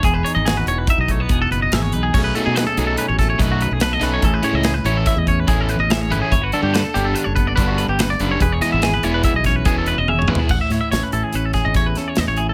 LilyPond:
<<
  \new Staff \with { instrumentName = "Clean electric guitar" } { \time 5/4 \key e \major \tempo 4 = 144 gis'16 b'16 cis''16 dis''16 gis'16 b'16 cis''16 b'16 e''16 dis''16 cis''16 b'16 gis'16 a'16 b'16 dis''16 e''16 cis''16 b'16 gis'16 | cis''16 b'16 a'16 gis'16 b'16 a'16 gis'16 a'16 b'16 cis''16 a'16 cis''16 b'16 fis'16 b'16 gis'16 b'16 dis''16 b'16 cis''16 | a'16 b'16 cis''16 dis''16 gis'16 b'16 cis''16 a'16 e''16 dis''16 cis''16 b'16 gis'16 a'16 b'16 dis''16 e''16 cis''16 b'16 gis'16 | cis''16 b'16 a'16 g'16 b'16 a'16 g'16 a'16 b'16 cis''16 b'16 d''16 b'16 fis'16 b'16 g'16 b'16 d''16 b'16 cis''16 |
b'16 cis''16 dis''16 e''16 gis'16 b'16 cis''16 b'16 e''16 dis''16 cis''16 b'16 gis'16 a'16 b'16 dis''16 e''16 cis''16 b'16 gis'16 | fis''16 e''16 cis''16 e''16 cis''16 b'16 a'16 gis'16 b'16 a'16 gis'16 dis''16 cis''16 b'16 a'16 cis''16 dis''16 cis''16 gis'16 a'16 | }
  \new Staff \with { instrumentName = "Clean electric guitar" } { \time 5/4 \key e \major << { gis'8 dis'8 fis'4 dis'8 a16 b4~ b16 gis'8 dis'8 | <fis a cis' gis'>8 cis'8 gis'4 cis'8 a4. a'8 cis'8 | <e cis' e' gis'>8 e'8 b'4 e'8 cis'4. gis'8 e'8 | e'16 fis'16 d'8 a'4 d'8 b2~ b8 |
gis'8 e'8 gis'4 e'8 cis'4. gis'8 cis'16 e'16 | r8 e'8 cis'8 e'8 cis'8 gis'8 e'8 cis'4 e'8 | } \\ { e,4. e4. b,4 e,4 | b,4. fis4. fis,4 b,4 | a,4. e4. e,4 a,4 | r4. g4. g,4 g,8 fis,8 |
e,4. e4. b,4 e,4 | a,4. e4. e,4 a,4 | } >> }
  \new Staff \with { instrumentName = "Overdriven electric guitar" } { \time 5/4 \key e \major r1 r4 | r8 <b, fis a dis'>8 r8 <b, fis a dis'>8 r4 <b, fis a dis'>8 r4 <b, fis a dis'>8 | r8 <e a cis' e'>8 r8 <e a cis' e'>8 r4 <e a cis' e'>8 r4 <e a cis' e'>8 | r8 <d g b d'>8 r8 <d g b d'>8 r4 <d g b d'>8 r4 <d g b d'>8 |
r8 <e gis b e'>8 r8 <e gis b e'>8 r4 <e gis b e'>8 r4 <e gis b e'>8 | r1 r4 | }
  \new Staff \with { instrumentName = "Fingered electric bass" } { \clef bass \time 5/4 \key e \major e,,8 r16 gis,,8. e,,8 r16 b,,8. e,,8 fis,,8 gis,,8 b,,8 | b,,8 r16 b,8 r16 b,,8 r16 a,,8. b,,8. b,,8. b,,8 | a,,8 r16 cis,8. a,,8 r16 e,8. a,,8. a,,8. gis,,16 r16 | g,,8 r16 g,8 r16 g,,8 r16 fis,,8. g,,8. g,,8. fis,,8 |
e,,8 r16 gis,,8. e,,8 r16 b,,8. e,,8. e,,8. gis,,16 r16 | a,,16 r16 a,16 r16 a,,16 r16 a,,16 r16 a,,8. gis,,16 a,,8 r8 e,16 a,,8. | }
  \new DrumStaff \with { instrumentName = "Drums" } \drummode { \time 5/4 <hh bd>8 hh8 <hh sn>8 hh8 <hh bd>8 <hh bd>8 <hh bd>8 hh8 <hh sn>8 hh8 | <cymc bd>8 hh8 <hh sn>8 hh8 hh8 <hh bd sn>8 <hh bd sn>8 hh8 <hh sn>8 <hh sn>8 | <hh bd>8 hh8 <hh sn>8 hh8 <hh bd sn>8 <hh bd>8 <hh bd>8 hh8 <hh sn>8 hh8 | <hh bd>8 hh8 <hh sn>8 hh8 hh8 <hh bd>8 <hh bd>8 hh8 <hh sn>8 hh8 |
<hh bd>8 <hh sn>8 <hh sn>8 hh8 <hh bd>8 <hh bd sn>8 <hh bd>8 hh8 \tuplet 3/2 { tommh8 toml8 tomfh8 } | <cymc bd>8 <hh sn>8 <hh sn>8 hh8 hh8 <hh bd sn>8 <hh bd sn>8 <hh sn>8 <hh sn>8 hh8 | }
>>